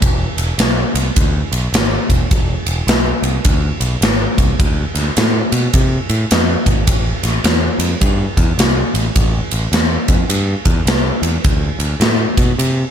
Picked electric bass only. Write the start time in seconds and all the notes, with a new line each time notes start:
0.02 E1
0.37 E1
0.58 B1
0.94 C2
1.16 D2
1.52 B1
1.73 G#1
2.09 E1
2.31 E1
2.67 E1
2.87 B1
3.22 C2
3.45 D2
3.80 B1
4.01 G#1
4.38 C2
4.59 D2
4.95 D2
5.17 A2
5.52 B2
5.74 C3
6.10 A2
6.31 F2
6.67 G#1
6.87 A1
7.23 A1
7.44 E2
7.79 F2
8.01 G2
8.37 E2
8.58 C2
8.94 A1
9.16 A1
9.52 A1
9.72 E2
10.09 F2
10.30 G2
10.65 E2
10.85 C2
11.22 E2
11.45 D2
11.79 D2
12.00 A2
12.38 B2
12.59 C3